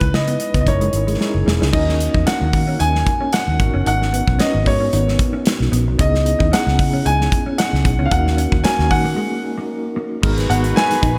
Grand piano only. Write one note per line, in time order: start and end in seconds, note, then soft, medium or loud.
0.00 0.15 B4 medium
0.15 0.58 D#5 medium
0.61 0.67 D#5 medium
0.68 1.43 C#5 medium
1.73 2.23 D#5 medium
2.27 2.76 F#5 medium
2.80 3.35 G#5 medium
3.33 3.86 F#5 medium
3.87 4.41 F#5 medium
4.40 4.65 D#5 medium
4.67 5.16 C#5 medium
6.00 6.54 D#5 medium
6.53 7.07 F#5 medium
7.06 7.60 G#5 medium
7.58 8.06 F#5 medium
8.05 8.12 F5 medium
8.12 8.66 F#5 medium
8.64 8.91 G#5 medium
8.91 9.40 F#5 medium
10.50 10.56 F#5 medium
10.76 11.19 G#5 loud